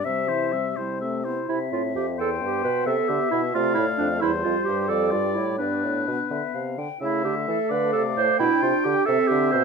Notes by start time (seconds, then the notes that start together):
0.04 C3 G3 C4 E5
0.28 E3 E4 C5
0.52 G3 C4 E5
0.76 C3 G3 E4 C5
1.01 A3 C4 E5
1.25 B3 E4 C5
1.48 C3 C4 E4 E5
1.72 A2 F4
1.95 F2 G4
2.18 E2 B3 A4 C5 G5
2.41 G2 G4
2.64 B2 B4
2.86 C3 A4 E5
3.09 D3 G4
3.31 B2 E4
3.53 C3 A3 F4 D5 F5
3.75 A2 E4
3.98 F2 D4
4.21 E2 G3 E4 C5
4.43 F2 F4
4.65 G2 G4
4.88 F2 A4 D5
5.11 G2 F4
5.35 A2 E4
5.58 G2 B3 D4 B4 D5
5.84 A2
6.07 B2
6.30 D3 E5
6.54 C3 F5
6.78 D3 G5
7.00 C#3 A3 E4 E5
7.24 D3 G4
7.47 E3 A4
7.69 D3 B4 D5 F5
7.93 C3 A4
8.17 A2 C5
8.38 B2 D4 E4 G5
8.62 C3 F4
8.85 D3 G4
9.06 C3 C4 A4 E5
9.28 D3 G4
9.52 B2 C5